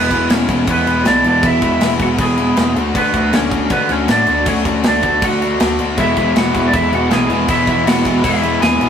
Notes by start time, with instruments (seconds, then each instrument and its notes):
Already playing: distorted electric guitar E3 G#3 B3 E4, lead electric guitar B3 B4
0.10 picked electric bass E1, overdriven electric guitar E2 B2, distorted electric guitar E3 G#3 B3 E4, kick, crash
0.29 picked electric bass E1, overdriven electric guitar E2 B2, distorted electric guitar E3 G#3 B3 E4, lead electric guitar C#4 C#5, snare, crash
0.48 picked electric bass E1, overdriven electric guitar E2 B2, distorted electric guitar E3 G#3 B3 E4, kick, crash
0.66 overdriven electric guitar E2 B2, picked electric bass E2, distorted electric guitar E3 G#3 B3 E4, kick, crash
0.71 lead electric guitar B3 B4
0.86 picked electric bass E1, overdriven electric guitar E2 B2, distorted electric guitar E3 G#3 B3 E4, crash
1.05 picked electric bass B1, overdriven electric guitar E2 B2, distorted electric guitar E3 G#3 B3 E4, lead electric guitar D4 D5, snare, crash
1.24 picked electric bass E1, overdriven electric guitar E2 B2, distorted electric guitar E3 G#3 B3 E4, lead electric guitar D4, crash
1.28 lead electric guitar D5
1.42 picked electric bass E1, overdriven electric guitar E2 B2, distorted electric guitar E3 G#3 B3 E4, lead electric guitar E4, kick, crash
1.46 lead electric guitar E5
1.62 picked electric bass E1, overdriven electric guitar E2 B2, distorted electric guitar E3 G#3 B3 E4, kick, crash
1.81 picked electric bass E1, overdriven electric guitar E2 B2, distorted electric guitar E3 G#3 B3 E4, snare, crash
1.99 picked electric bass E1, overdriven electric guitar E2 B2, distorted electric guitar E3 G#3 B3 E4, lead electric guitar F#4 F#5, kick, crash
2.18 picked electric bass E1, overdriven electric guitar E2 B2, distorted electric guitar E3 G#3 B3 E4, lead electric guitar G#4 G#5, kick, crash
2.37 overdriven electric guitar E2 B2, distorted electric guitar E3 G#3 B3 E4, crash
2.57 picked electric bass E1, overdriven electric guitar E2 B2, distorted electric guitar E3 G#3 B3 E4, snare, crash
2.76 picked electric bass D2, distorted electric guitar D3 A3 D4 F#4, crash
2.95 picked electric bass D2, distorted electric guitar D3 A3 D4 F#4, lead electric guitar B3 B4, kick, crash
3.14 picked electric bass D2, distorted electric guitar D3 A3 D4 F#4, kick, crash
3.33 picked electric bass D2, distorted electric guitar D3 A3 D4 F#4, lead electric guitar C#4 C#5, snare, crash
3.51 picked electric bass D2, distorted electric guitar D3 A3 D4 F#4, kick, crash
3.70 picked electric bass D3, distorted electric guitar D3 A3 D4 F#4, lead electric guitar B3 B4, kick, crash
3.89 picked electric bass D2, distorted electric guitar D3 A3 D4 F#4, lead electric guitar C#4 C#5, crash
4.08 picked electric bass A2, distorted electric guitar D3 A3 D4 F#4, lead electric guitar D4 D5, snare, crash
4.27 picked electric bass D2, distorted electric guitar D3 A3 D4 F#4, crash
4.46 picked electric bass D2, distorted electric guitar D3 A3 D4 F#4, lead electric guitar C#4 C#5, kick, crash
4.65 picked electric bass D2, distorted electric guitar D3 A3 D4 F#4, kick, crash
4.84 picked electric bass D2, distorted electric guitar D3 A3 D4 F#4, lead electric guitar D4, snare, crash
4.88 lead electric guitar D5
5.02 picked electric bass D2, distorted electric guitar D3 A3 D4 F#4, kick, crash
5.21 picked electric bass D2, distorted electric guitar D3 A3 D4 F#4, lead electric guitar F#4 F#5, kick, crash
5.41 distorted electric guitar D3 A3 D4 F#4, crash
5.60 picked electric bass D2, distorted electric guitar D3 A3 D4 F#4, snare, crash
5.79 picked electric bass D2, distorted electric guitar D3 A3 D4 F#4, crash
5.97 picked electric bass E1, overdriven electric guitar E2 B2, distorted electric guitar E3 G#3 B3 E4, lead electric guitar E4 E5, kick, crash
6.17 picked electric bass E1, overdriven electric guitar E2 B2, distorted electric guitar E3 G#3 B3 E4, kick, crash
6.35 picked electric bass E1, overdriven electric guitar E2 B2, distorted electric guitar E3 G#3 B3 E4, lead electric guitar F#4 F#5, snare, crash
6.54 picked electric bass E1, overdriven electric guitar E2 B2, distorted electric guitar E3 G#3 B3 E4, kick, crash
6.68 lead electric guitar D5
6.73 overdriven electric guitar E2 B2, picked electric bass E2, distorted electric guitar E3 G#3 B3 E4, lead electric guitar E4 E5, kick, crash
6.92 picked electric bass E1, overdriven electric guitar E2 B2, distorted electric guitar E3 G#3 B3 E4, lead electric guitar F#4 F#5, crash
7.11 picked electric bass B1, overdriven electric guitar E2 B2, distorted electric guitar E3 G#3 B3 E4, lead electric guitar G#4 G#5, snare, crash
7.30 picked electric bass E1, overdriven electric guitar E2 B2, distorted electric guitar E3 G#3 B3 E4, crash
7.48 picked electric bass E1, overdriven electric guitar E2 B2, distorted electric guitar E3 G#3 B3 E4, lead electric guitar E4 E5, kick, crash
7.67 picked electric bass E1, overdriven electric guitar E2 B2, distorted electric guitar E3 G#3 B3 E4, lead electric guitar E4 E5, kick, crash
7.86 picked electric bass E1, overdriven electric guitar E2 B2, distorted electric guitar E3 G#3 B3 E4, lead electric guitar F#4 F#5, snare, crash
8.05 picked electric bass E1, overdriven electric guitar E2 B2, distorted electric guitar E3 G#3 B3 E4, kick, crash
8.23 picked electric bass E1, overdriven electric guitar E2 B2, distorted electric guitar E3 G#3 B3 E4, lead electric guitar E4 E5, kick, crash
8.43 overdriven electric guitar E2 B2, distorted electric guitar E3 G#3 B3 E4, crash
8.61 picked electric bass E1, overdriven electric guitar E2 B2, distorted electric guitar E3 G#3 B3 E4, lead electric guitar G#4 G#5, snare, crash
8.80 picked electric bass B1, overdriven electric guitar E2 B2, distorted electric guitar E3 G#3 B3 E4, crash